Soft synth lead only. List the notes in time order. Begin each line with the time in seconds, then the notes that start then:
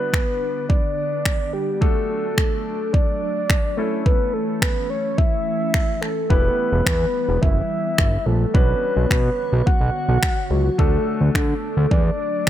Already playing: B4
0.13 B4
0.69 D5
1.53 G4
1.81 A4
2.37 A4
2.93 D5
3.77 A4
4.06 B4
4.33 A4
4.62 B4
4.90 C#5
5.18 E5
6.01 A4
6.30 B4
6.86 B4
7.42 E5
8.26 A4
8.54 B4
9.10 B4
9.66 F#5
10.51 F#4
10.78 A4
11.35 A4
11.91 D5